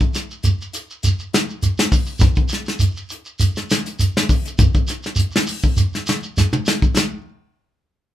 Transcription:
0.00 kick medium
0.00 shekere soft
0.14 snare soft
0.14 closed hi-hat medium
0.14 shekere medium
0.31 shekere soft
0.43 closed hi-hat medium
0.43 shekere medium
0.61 shekere soft
0.73 closed hi-hat medium
0.73 shekere medium
0.90 shekere soft
1.03 closed hi-hat medium
1.03 shekere medium
1.19 shekere soft
1.33 snare medium
1.33 closed hi-hat medium
1.33 shekere medium
1.49 shekere soft
1.62 closed hi-hat medium
1.62 shekere medium
1.78 snare medium
1.78 shekere soft
1.92 kick medium
1.92 open hi-hat medium
1.92 shekere medium
2.06 shekere soft
2.19 kick medium
2.19 snare soft
2.19 closed hi-hat medium
2.19 shekere medium
2.36 kick medium
2.36 shekere soft
2.49 closed hi-hat medium
2.49 shekere medium
2.53 snare soft
2.66 snare soft
2.66 shekere soft
2.79 closed hi-hat medium
2.79 shekere medium
2.96 shekere soft
3.10 closed hi-hat medium
3.10 shekere medium
3.25 shekere soft
3.40 closed hi-hat medium
3.40 shekere loud
3.56 snare soft
3.56 shekere soft
3.70 snare medium
3.70 closed hi-hat medium
3.70 shekere medium
3.86 closed hi-hat medium
3.86 shekere soft
3.99 closed hi-hat medium
3.99 shekere medium
4.17 snare medium
4.17 shekere soft
4.29 kick medium
4.29 open hi-hat medium
4.29 shekere medium
4.45 closed hi-hat medium
4.45 shekere soft
4.59 kick medium
4.59 closed hi-hat medium
4.59 shekere medium
4.74 kick medium
4.74 shekere soft
4.88 snare soft
4.88 closed hi-hat medium
4.88 shekere medium
5.03 snare soft
5.03 shekere soft
5.16 closed hi-hat medium
5.16 shekere medium
5.31 shekere soft
5.36 snare medium
5.47 open hi-hat medium
5.47 shekere medium
5.63 kick medium
5.63 shekere soft
5.77 closed hi-hat medium
5.77 shekere medium
5.93 snare soft
5.93 shekere soft
6.06 snare medium
6.06 closed hi-hat medium
6.06 shekere medium
6.23 shekere soft
6.37 snare soft
6.37 shekere medium
6.53 mid tom medium
6.53 shekere soft
6.66 snare medium
6.66 shekere medium
6.82 kick medium
6.82 shekere soft
6.96 snare medium
6.96 shekere loud

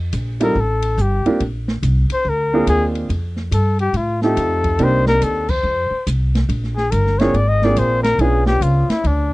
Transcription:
0.00 0.11 F2 medium
0.13 0.54 A#1 medium
0.13 kick soft
0.13 hi-hat pedal medium
0.13 ride medium
0.40 0.54 G3 medium
0.40 0.54 C4 medium
0.40 0.54 D#4 medium
0.40 0.54 F4 medium
0.40 0.55 A4 medium
0.40 0.62 A#4 medium
0.40 ride medium
0.55 0.97 A1 medium
0.55 kick soft
0.60 1.03 A4 medium
0.82 ride medium
0.98 1.23 G1 medium
0.98 1.27 G4 medium
0.98 kick soft
0.98 hi-hat pedal medium
1.26 1.39 A#3 medium
1.26 1.39 C4 medium
1.26 1.39 D4 medium
1.26 1.40 F4 medium
1.26 1.40 G4 medium
1.26 muted upright bass stroke soft
1.26 ride soft
1.40 1.81 A#1 medium
1.40 kick soft
1.40 ride medium
1.68 snare medium
1.83 2.08 C2 medium
1.83 kick soft
1.83 hi-hat pedal medium
1.83 ride medium
2.10 2.30 C5 medium
2.10 muted upright bass stroke soft
2.10 ride medium
2.25 2.66 D2 medium
2.25 kick soft
2.29 2.69 A#4 medium
2.53 3.07 A#3 medium
2.53 3.07 C4 medium
2.53 3.08 D4 medium
2.53 3.08 F4 medium
2.53 3.08 G#4 medium
2.67 3.08 D#2 loud
2.67 2.85 G#4 medium
2.67 kick soft
2.67 hi-hat pedal medium
2.67 ride medium
2.95 ride soft
3.09 3.51 F2 medium
3.09 kick soft
3.09 ride medium
3.36 snare soft
3.51 3.93 G2 medium
3.51 3.79 A4 medium
3.51 kick soft
3.51 hi-hat pedal medium
3.51 ride medium
3.79 3.98 G4 medium
3.79 ride soft
3.93 4.35 A2 medium
3.93 4.22 F4 medium
3.93 kick soft
3.93 ride medium
4.21 4.77 A3 medium
4.21 4.77 C4 medium
4.21 4.77 D#4 medium
4.21 4.78 F4 medium
4.21 4.78 G4 medium
4.21 4.85 A4 medium
4.21 snare soft
4.37 4.78 F2 medium
4.37 kick soft
4.37 hi-hat pedal medium
4.37 ride medium
4.64 kick medium
4.64 ride soft
4.79 5.20 C2 medium
4.79 5.44 A#3 medium
4.79 5.44 C4 medium
4.79 5.44 D4 medium
4.79 5.44 D#4 medium
4.79 5.44 G4 medium
4.79 kick soft
4.79 ride medium
4.84 5.08 C5 medium
5.06 5.25 A#4 loud
5.06 snare medium
5.21 5.63 D#2 medium
5.21 5.51 A4 medium
5.21 kick soft
5.21 hi-hat pedal medium
5.21 ride medium
5.48 6.07 C5 medium
5.48 kick medium
5.48 crash medium
5.63 5.89 F2 medium
5.90 muted upright bass stroke soft
6.07 6.48 C2 medium
6.07 kick soft
6.07 hi-hat pedal medium
6.07 ride medium
6.35 snare medium
6.35 ride soft
6.49 6.90 A#1 medium
6.49 ride medium
6.64 snare soft
6.77 6.93 G#4 medium
6.77 snare soft
6.91 7.33 G1 medium
6.91 7.20 A#4 medium
6.91 kick soft
6.91 hi-hat pedal medium
6.91 ride medium
7.07 snare soft
7.19 7.33 A#3 medium
7.19 7.34 C4 medium
7.19 7.34 D4 medium
7.19 7.34 F4 medium
7.19 7.34 G#4 medium
7.19 7.37 C#5 medium
7.19 snare soft
7.19 ride soft
7.34 7.75 G#1 medium
7.34 7.50 D5 medium
7.34 ride medium
7.48 7.66 D#5 medium
7.62 8.17 A#3 medium
7.62 8.18 C4 medium
7.62 8.17 D4 medium
7.62 8.18 F4 medium
7.62 8.18 G#4 medium
7.62 7.80 D5 medium
7.62 snare soft
7.76 8.18 A#1 loud
7.76 8.03 C5 medium
7.76 kick soft
7.76 hi-hat pedal medium
7.76 ride medium
8.03 8.22 A#4 loud
8.03 snare medium
8.03 ride soft
8.18 8.60 B1 medium
8.18 9.34 B3 medium
8.18 9.34 C#4 medium
8.18 9.34 D4 medium
8.18 9.34 F4 medium
8.18 8.46 G#4 medium
8.18 9.34 G#4 medium
8.18 ride medium
8.46 8.64 G4 medium
8.46 snare medium
8.61 8.87 C#2 medium
8.61 8.91 F4 medium
8.61 kick soft
8.61 hi-hat pedal medium
8.61 ride medium
8.88 9.08 E4 medium
8.88 muted upright bass stroke soft
8.88 snare medium
8.88 ride medium
9.04 9.34 D2 medium
9.04 9.33 D4 medium
9.04 kick soft
9.04 ride medium

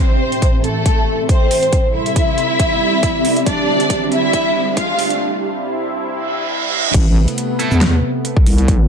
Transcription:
0.00 1.71 A2 medium
0.00 1.71 E3 medium
0.00 0.56 C4 medium
0.00 0.69 C4 medium
0.00 1.71 C4 medium
0.00 0.69 G4 medium
0.00 2.43 A4 loud
0.00 0.56 C5 loud
0.00 0.69 D5 medium
0.00 4.16 E5 medium
0.00 riser medium
0.32 closed hi-hat medium
0.42 kick medium
0.42 closed hi-hat medium
0.57 2.42 C6 medium
0.64 1.21 A3 medium
0.64 1.21 A4 loud
0.64 closed hi-hat medium
0.86 kick loud
0.86 closed hi-hat medium
1.29 1.86 C4 medium
1.29 1.86 C5 loud
1.29 kick loud
1.29 closed hi-hat medium
1.51 open hi-hat medium
1.63 closed hi-hat medium
1.73 3.45 C3 medium
1.73 6.90 G3 medium
1.73 4.15 C4 medium
1.73 3.45 E4 medium
1.73 kick medium
1.73 closed hi-hat medium
1.89 5.20 G4 medium
1.89 5.20 D5 medium
1.94 3.38 E4 medium
1.94 3.38 E5 loud
2.06 closed hi-hat medium
2.16 kick loud
2.16 closed hi-hat medium
2.38 closed hi-hat medium
2.60 kick loud
2.60 closed hi-hat medium
3.03 kick loud
3.03 closed hi-hat medium
3.25 open hi-hat loud
3.36 closed hi-hat medium
3.46 5.19 D3 medium
3.46 5.19 C4 medium
3.46 4.04 D4 medium
3.46 5.20 D4 medium
3.46 4.04 D5 loud
3.46 kick loud
3.46 closed hi-hat medium
3.80 closed hi-hat medium
3.90 kick loud
3.90 closed hi-hat medium
4.12 4.69 E4 medium
4.12 4.69 E5 loud
4.12 closed hi-hat medium
4.33 kick loud
4.33 closed hi-hat medium
4.77 5.20 F4 medium
4.77 5.20 F5 medium
4.77 kick loud
4.77 closed hi-hat medium
4.99 open hi-hat loud
5.10 closed hi-hat medium
5.20 6.93 C3 medium
5.20 6.93 E4 medium
6.07 reverse cymbal medium
6.94 7.26 A1 loud
6.94 8.88 C3 medium
6.94 8.88 A3 medium
6.94 8.88 B3 medium
6.94 kick loud
6.94 closed hi-hat medium
6.94 crash loud
7.28 closed hi-hat medium
7.38 closed hi-hat medium
7.59 7.76 A3 medium
7.59 7.76 E4 medium
7.59 7.76 A4 medium
7.59 closed hi-hat medium
7.59 shaker medium
7.71 8.01 E2 loud
7.71 shaker medium
7.81 snare loud
7.81 closed hi-hat medium
8.25 closed hi-hat medium
8.37 kick loud
8.47 8.88 C2 loud
8.47 open hi-hat loud
8.58 closed hi-hat medium
8.68 kick loud
8.68 closed hi-hat medium

